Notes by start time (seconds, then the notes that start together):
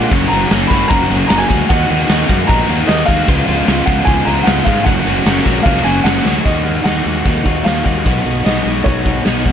Already playing: A#2 D3 G#3 D4 F4 F#5
0.11 F#1 F#2 C#3 F#3 A#3 C#4 F#4, kick, crash
0.28 F#1 F#2 C#3 A#5, crash
0.32 F#3 A#3 C#4 F#4
0.51 F#1 F#2 C#3 F#3 A#3 C#4 F#4, snare, crash
0.67 F#1 F#2 C#3 F#3 B5, kick, crash
0.72 A#3 C#4 F#4
0.88 F#1 F#2 C#3 F#3 A#3 A#5, kick, crash
0.92 C#4 F#4
1.09 F#1 F#2 C#3 F#3 A#3 C#4 F#4, crash
1.27 F#1 F#2 C#3 F#3 A#3 C#4 A#5, snare, crash
1.32 F#4
1.38 G#5
1.48 D2 F#2 C#3 F#3 A#3 C#4 F#4, kick, crash
1.69 D#2 D#3 A#3 D#4 F#4 F#5, kick, crash
1.89 D#2 D#3 A#3 D#4 F#4, crash
2.09 D#2 D#3 A#3 D#4 F#4, snare, crash
2.28 F#2 D#3 A#3 D#4 F#4, kick, crash
2.47 A#1 D#3 A#3 D#4 F#4 A#5, kick, crash
2.68 D#2 D#3 A#3 D#4 F#4, crash
2.87 D#2 D#3 A#3 D#4 F#4 D#5, snare, crash
3.06 D#2 D#3 A#3 D#4 F#4 F5, kick, crash
3.27 C#2 C#3 F3 G#3 B3 F4, kick, crash
3.47 C#2 C#3 F3 G#3 B3 F4, crash
3.67 C#2 C#3 F3 G#3 B3 F4, snare, crash
3.86 C#2 C#3 F3 G#3 B3 F4 F#5, kick, crash
4.05 C#2 C#3 F3 G#3 B3 F4 G#5, kick, crash
4.25 C#2 C#3 F3 G#3 B3 F4 A#5, crash
4.44 C#2 C#3 F3 G#3 B3 F4 F#5, snare, crash
4.64 G#2 C#3 F3 G#3 B3 F4 F5, kick, crash
4.84 F#1 F#2 C#3 F#3 A#3 C#4 F#4 F#5, kick, crash
5.05 F#1 F#2 C#3 F#3 A#3 C#4 F#4, crash
5.24 F#1 F#2 C#3 F#3 A#3 C#4 F#4, snare, crash
5.44 A#1 F#2 C#3 F#3 A#3 C#4 F#4, kick, crash
5.63 C#2 F#2 C#3 F#3 A#3 C#4 F#4 F5, kick, crash
5.77 snare
5.84 F#1 F#2 C#3 F#3 A#3 C#4 F#4 G#5, crash
6.04 F#1 F#2 C#3 F#3 A#3 C#4 F#4 F#5, snare, crash
6.23 D2 F#2 C#3 F#3 A#3 C#4 F#4, snare
6.43 D#2 D#3 A#3 D#4 F#4 D#5, kick, open hi-hat
6.64 A#3 D#4 F#4, open hi-hat
6.84 D#2 D#3 A#3 D#4 F#4 F#5, snare, open hi-hat
7.04 D#2 A#3 D#4 F#4, open hi-hat
7.25 D#2 D#3 A#3 D#4 F#4, kick, open hi-hat
7.44 D#2 A#3 D#4 F#4, kick, open hi-hat
7.64 D#2 D#3 A#3 D#4 F#4 F5, snare, open hi-hat
7.84 D#2 A#3 D#4 F#4, kick, open hi-hat
8.04 B1 B2 F#3 B3 D#4 F#4, kick, open hi-hat
8.24 B1 B3 D#4 F#4, open hi-hat
8.44 B1 B2 F#3 B3 D#4 F#4 D#5, snare, open hi-hat
8.64 B1 B3 D#4 F#4, open hi-hat
8.84 B1 F#3 B3 D#4 F#4 C#5, kick, open hi-hat
9.05 B3 D#4 F#4, kick, open hi-hat
9.25 B1 B2 F#3 B3 D#4 F#4, snare, open hi-hat
9.45 F1 B3 D#4 F#4, kick, open hi-hat